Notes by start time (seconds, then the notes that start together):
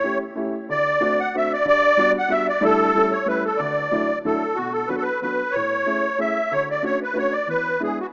Already playing: C#5
0.04 A3 C#4 E4 G4
0.35 A3 C#4 E4 G4
0.69 D2 D5
1.00 A3 C4 D4 F#4
1.20 F#5
1.34 A3 C4 D4 F#4 E5
1.53 D5
1.65 G2 D5
1.97 G3 B3 D4 F#4
2.19 F#5
2.28 G3 B3 D4 F#4 E5
2.49 D5
2.61 G3 A3 D4 E4 A4
2.95 G3 A3 C#4 E4
3.12 C#5
3.26 G3 A3 C#4 E4 B4
3.45 A4
3.57 D2 D5
3.91 F#3 A3 D4 E4
4.25 F#3 A3 D4 E4 A4
4.55 B2 F#4
4.72 A4
4.88 F#3 B3 D4 F#4 B4
4.96 A4
5.02 B4
5.21 F#3 B3 D4 F#4 B4
5.51 C#5
5.55 A2
5.86 A3 C#4 E4 G#4
6.18 A3 C#4 E4 G#4 E5
6.51 D2 C#5
6.71 D5
6.82 A3 C#4 D4 F#4 C#5
7.03 B4
7.13 A3 C#4 D4 F#4
7.18 C#5
7.32 D5
7.47 E2 B4
7.80 G#3 B3 D4 E4 G#4
8.00 F#4